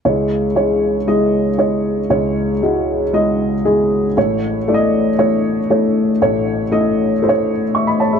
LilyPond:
<<
  \new Staff \with { instrumentName = "Upright piano" } { \time 4/4 \key cis \minor \tempo 4 = 117 <gis e' cis''>4 <gis e' cis''>4 <gis e' dis''>4 <gis e' cis''>4 | <gis e' cis''>4 <gis e' fis'>4 <gis e' dis''>4 <gis e' gis'>4 | <a e' cis''>4 <a e' d'' dis''>4 <a e' cis''>4 <a e' cis''>4 | <a e' cis''>4 <a e' dis''>4 <a e' bis' cis''>4 <e'' cis'''>16 <dis'' b''>16 <cis'' a''>16 <gis' e''>16 | }
  \new Staff \with { instrumentName = "Upright piano" } { \clef bass \time 4/4 \key cis \minor <cis, cis>1 | <cis, cis>1 | <a,, a,>1 | <a,, a,>1 | }
>>